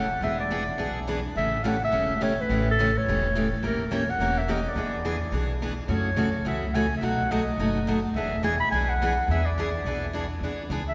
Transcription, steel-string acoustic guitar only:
0.22 0.42 E3 medium
0.22 0.42 B3 medium
0.22 0.43 D4 medium
0.22 0.43 G#4 medium
0.50 0.62 E3 medium
0.50 0.62 B3 medium
0.50 0.63 D4 medium
0.50 0.63 G#4 medium
0.78 0.98 E3 medium
0.78 0.98 B3 medium
0.78 0.99 D4 medium
0.78 0.99 G#4 medium
1.07 1.19 E3 medium
1.07 1.19 B3 medium
1.07 1.19 D4 medium
1.07 1.19 G#4 medium
1.37 1.56 C#3 medium
1.37 1.57 E3 medium
1.37 1.57 A3 medium
1.37 1.57 C#4 medium
1.37 1.57 G4 medium
1.64 1.75 C#3 medium
1.64 1.75 E3 medium
1.64 1.76 A3 medium
1.64 1.76 C#4 medium
1.64 1.76 G4 medium
1.91 2.12 C#3 medium
1.91 2.12 E3 medium
1.91 2.12 A3 medium
1.91 2.13 C#4 medium
1.91 2.12 G4 medium
2.21 2.32 C#3 medium
2.21 2.32 E3 medium
2.21 2.32 A3 medium
2.21 2.32 C#4 medium
2.21 2.33 G4 medium
2.50 2.69 C#3 medium
2.50 2.69 E3 medium
2.50 2.69 A3 medium
2.50 2.70 C#4 medium
2.50 2.70 G4 medium
2.79 2.89 C#3 medium
2.79 2.90 E3 medium
2.79 2.90 A3 medium
2.79 2.90 C#4 medium
2.79 2.90 G4 medium
3.08 3.27 C#3 medium
3.08 3.27 E3 medium
3.08 3.27 A3 medium
3.08 3.27 C#4 medium
3.08 3.27 G4 medium
3.35 3.46 C#3 medium
3.35 3.46 E3 medium
3.35 3.46 A3 medium
3.35 3.46 C#4 medium
3.35 3.47 G4 medium
3.62 3.82 E3 medium
3.62 3.82 A#3 medium
3.62 3.83 C#4 medium
3.62 3.83 G4 medium
3.62 3.83 A#4 medium
3.91 4.02 E3 medium
3.91 4.02 A#3 medium
3.91 4.02 C#4 medium
3.91 4.03 G4 medium
3.91 4.03 A#4 medium
4.20 4.39 E3 medium
4.20 4.39 A#3 medium
4.20 4.40 C#4 medium
4.20 4.40 G4 medium
4.20 4.40 A#4 medium
4.48 4.59 E3 medium
4.48 4.59 A#3 medium
4.48 4.59 C#4 medium
4.48 4.59 G4 medium
4.48 4.60 A#4 medium
4.76 4.95 E3 medium
4.76 4.96 B3 medium
4.76 4.96 D4 medium
4.76 4.96 G#4 medium
5.05 5.15 E3 medium
5.05 5.16 B3 medium
5.05 5.16 D4 medium
5.05 5.16 G#4 medium
5.32 5.52 E3 medium
5.32 5.52 B3 medium
5.32 5.52 D4 medium
5.32 5.53 G#4 medium
5.62 5.72 E3 medium
5.62 5.72 B3 medium
5.62 5.73 D4 medium
5.62 5.73 G#4 medium
5.88 6.08 C#3 medium
5.88 6.08 E3 medium
5.88 6.08 A3 medium
5.88 6.08 C#4 medium
5.88 6.09 F#4 medium
6.16 6.28 C#3 medium
6.16 6.28 E3 medium
6.16 6.28 A3 medium
6.16 6.28 C#4 medium
6.16 6.29 F#4 medium
6.45 6.64 C#3 medium
6.45 6.65 E3 medium
6.45 6.65 A3 medium
6.45 6.65 C#4 medium
6.45 6.65 F#4 medium
6.74 6.85 C#3 medium
6.74 6.86 E3 medium
6.74 6.85 A3 medium
6.74 6.85 C#4 medium
6.74 6.86 F#4 medium
7.01 7.21 B2 medium
7.01 7.22 F#3 medium
7.01 7.21 A3 medium
7.01 7.22 D#4 medium
7.01 7.22 F#4 medium
7.31 7.41 B2 medium
7.31 7.42 F#3 medium
7.31 7.42 A3 medium
7.31 7.42 D#4 medium
7.31 7.42 F#4 medium
7.59 7.78 B2 medium
7.59 7.78 F#3 medium
7.59 7.78 A3 medium
7.59 7.79 D#4 medium
7.59 7.79 F#4 medium
7.87 7.98 B2 medium
7.87 7.98 F#3 medium
7.87 7.98 A3 medium
7.87 7.99 D#4 medium
7.87 7.99 F#4 medium
8.16 8.35 E3 medium
8.16 8.35 B3 medium
8.16 8.36 D4 medium
8.16 8.36 G#4 medium
8.43 8.54 E3 medium
8.43 8.54 B3 medium
8.43 8.55 D4 medium
8.43 8.55 G#4 loud
8.72 8.91 E3 medium
8.72 8.91 B3 medium
8.72 8.92 D4 medium
8.72 8.92 G#4 medium
9.01 9.12 E3 medium
9.01 9.12 B3 medium
9.01 9.12 D4 medium
9.01 9.12 G#4 medium
9.30 9.48 E3 medium
9.30 9.49 B3 medium
9.30 9.49 D4 medium
9.30 9.49 G#4 medium
9.58 9.68 E3 medium
9.58 9.68 B3 medium
9.58 9.69 D4 medium
9.58 9.69 G#4 medium
9.85 10.04 E3 medium
9.85 10.05 B3 medium
9.85 10.05 D4 medium
9.85 10.06 G#4 medium
10.13 10.24 E3 medium
10.13 10.24 B3 medium
10.13 10.25 D4 medium
10.13 10.25 G#4 medium
10.43 10.61 E3 medium
10.43 10.62 B3 medium
10.43 10.62 D4 medium
10.43 10.62 G#4 medium
10.70 10.81 E3 medium
10.70 10.81 B3 medium
10.70 10.81 D4 medium
10.70 10.82 G#4 medium

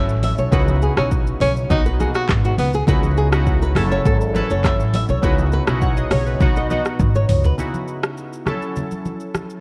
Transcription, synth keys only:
0.00 0.54 F#3 medium
0.00 0.55 C#4 medium
0.00 0.53 E4 medium
0.00 0.55 A4 medium
0.51 0.87 C#3 medium
0.51 0.87 B3 medium
0.51 0.88 D#4 medium
0.51 0.88 E4 medium
0.51 0.88 F#4 loud
0.96 1.69 C#3 medium
0.96 1.69 B3 medium
0.96 1.70 D#4 medium
0.96 1.70 E4 medium
0.96 1.71 F#4 medium
1.69 1.93 B2 medium
1.69 1.94 B3 medium
1.69 1.94 D#4 medium
1.69 1.95 F#4 medium
1.99 2.69 B2 medium
1.99 2.06 A#3 medium
1.99 2.70 D#4 medium
1.99 2.70 F#4 medium
2.06 2.73 B3 medium
2.87 3.22 C#3 medium
2.87 3.23 B3 medium
2.87 3.23 D#4 medium
2.87 3.23 E4 medium
2.87 3.24 F#4 loud
3.32 3.76 C#3 medium
3.32 3.76 B3 medium
3.32 3.76 D#4 medium
3.32 3.75 E4 medium
3.32 3.77 F#4 loud
3.75 4.23 F#3 loud
3.75 4.23 C#4 medium
3.75 4.24 E4 medium
3.75 4.24 A4 loud
4.34 5.04 F#3 medium
4.34 5.05 C#4 medium
4.34 5.05 E4 medium
4.34 5.06 A4 loud
5.22 5.58 C#3 medium
5.22 5.58 B3 medium
5.22 5.58 D#4 medium
5.22 5.58 E4 medium
5.22 5.59 F#4 loud
5.67 6.40 C#3 medium
5.67 6.39 B3 medium
5.67 6.40 D#4 medium
5.67 6.41 E4 medium
5.67 5.83 F#4 loud
5.82 5.97 C#5 medium
5.82 5.97 F#5 medium
5.98 6.11 G#4 medium
5.98 6.11 D#5 medium
6.12 6.26 G#4 medium
6.12 6.26 C#5 medium
6.27 6.41 F#4 medium
6.27 6.55 B4 medium
6.40 6.64 B2 loud
6.40 6.64 B3 medium
6.40 6.65 D#4 medium
6.40 6.65 F#4 loud
6.69 7.40 B2 medium
6.69 7.40 B3 medium
6.69 7.40 D#4 medium
6.69 7.41 F#4 loud
7.57 8.46 C#3 medium
7.57 8.46 B3 medium
7.57 8.47 D#4 medium
7.57 8.46 E4 medium
7.57 8.47 F#4 medium
8.45 9.40 F#3 medium
8.45 9.41 C#4 medium
8.45 9.41 E4 medium
8.45 9.42 A4 medium

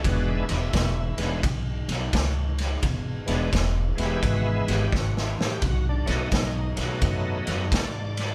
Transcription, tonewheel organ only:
0.04 0.45 E3 medium
0.04 0.45 G#3 medium
0.04 0.45 B3 medium
0.04 0.45 D4 medium
0.04 0.28 F#4 medium
0.30 0.51 E4 medium
0.49 0.55 D#4 medium
0.54 1.20 E4 medium
1.18 1.41 E3 medium
1.18 1.41 G#3 medium
1.18 1.42 B3 medium
1.18 1.42 D4 medium
3.26 3.50 E3 medium
3.26 3.50 G#3 medium
3.26 3.50 B3 medium
3.26 3.51 D4 medium
3.95 4.86 E3 medium
3.95 4.87 G#3 medium
3.95 4.87 B3 medium
3.95 4.49 E4 medium
3.95 4.04 F#4 medium
4.03 4.24 G4 loud
4.27 4.47 F#4 medium
4.50 4.71 E4 medium
4.68 4.73 F#4 medium
4.72 4.93 G4 medium
4.96 5.17 F#4 medium
5.19 5.40 E4 medium
5.42 5.63 G4 medium
5.65 5.86 F#4 medium
5.89 6.06 D4 medium
6.06 6.29 F#3 medium
6.06 6.29 A3 medium
6.06 6.29 B3 medium
6.06 6.13 D4 medium
6.06 6.11 D#4 medium
6.12 6.77 D#4 medium
6.76 7.66 F#3 medium
6.76 7.66 A3 medium
6.76 7.67 B3 medium
6.76 7.67 D#4 medium
7.75 8.35 D5 loud

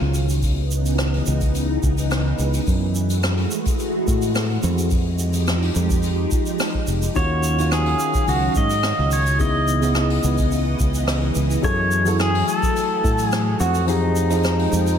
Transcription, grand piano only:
7.15 7.54 D#3 medium
7.15 7.55 C#4 medium
7.15 7.55 F4 medium
7.15 7.55 F#4 medium
7.57 7.71 D#3 medium
7.57 7.72 C#4 medium
7.57 7.72 F4 medium
7.57 7.72 F#4 medium
9.39 9.78 C#3 medium
9.39 9.79 B3 medium
9.39 9.79 D#4 medium
9.39 9.80 E4 medium
9.81 9.95 C#3 medium
9.81 9.96 B3 medium
9.81 9.96 D#4 medium
9.81 9.96 E4 medium
11.63 12.02 F#3 medium
11.63 12.03 E4 medium
11.63 12.03 G#4 medium
11.63 12.04 A4 medium
12.05 12.19 F#3 medium
12.05 12.20 E4 medium
12.05 12.20 G#4 medium
12.05 12.21 A4 loud
13.87 14.27 F3 medium
13.87 14.27 D#4 medium
13.87 14.28 G4 medium
13.87 14.28 G#4 medium
14.30 14.44 F3 medium
14.30 14.44 D#4 medium
14.30 14.45 G4 medium
14.30 14.45 G#4 medium

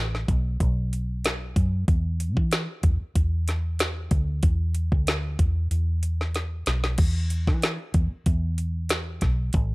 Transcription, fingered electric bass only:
0.00 0.25 A1 medium
0.28 0.58 B1 medium
0.60 1.52 B1 medium
1.56 1.86 F#2 medium
1.88 2.37 E2 medium
2.37 2.66 E3 medium
2.84 2.99 E2 loud
3.01 muted fingered electric bass stroke soft
3.16 4.08 E2 medium
4.11 4.41 D2 medium
4.43 4.88 E2 loud
4.92 5.35 D2 medium
5.39 5.69 E2 medium
5.71 6.63 E2 medium
6.67 6.97 B1 medium
6.99 7.49 E2 medium
7.47 7.77 E3 medium
7.94 8.10 E2 medium
8.12 muted fingered electric bass stroke soft
8.26 9.18 E2 medium
9.22 9.52 B1 medium
9.54 9.75 A1 loud

